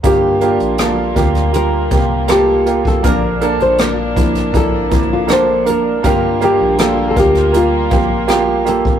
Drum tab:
HH |x-xxx-xxx-x-x-x-|x-xxx-xxx-x-x-x-|x-x-x-xxx-x-x-x-|
SD |----r--r----r---|----r--r----r---|----r--r----r---|
BD |o-----o---o----o|o-----o-o-o-----|o-----o---o----o|